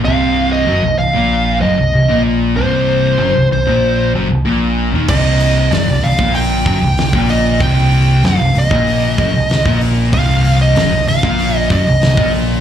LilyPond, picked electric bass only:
\new Staff \with { instrumentName = "Picked electric bass" } { \clef bass \time 4/4 \key c \minor \tempo 4 = 95 c,,4 fis,,16 c,,16 c,,16 bes,,8. fis,,16 c,,16 c,,16 bes,,8. | c,,4 fis,,16 c,,16 c,,16 bes,,8. fis,,16 c,,16 bes,,8. ees,,16 | c,,4 fis,,16 c,,16 c,,16 bes,,8. fis,,16 c,,16 c,,16 bes,,8. | c,,4 fis,,16 c,,16 c,,16 bes,,8. fis,,16 c,,16 c,,16 bes,,8. |
c,,4 fis,,16 c,,16 c,,16 bes,,8. fis,,16 c,,16 c,,16 bes,,8. | }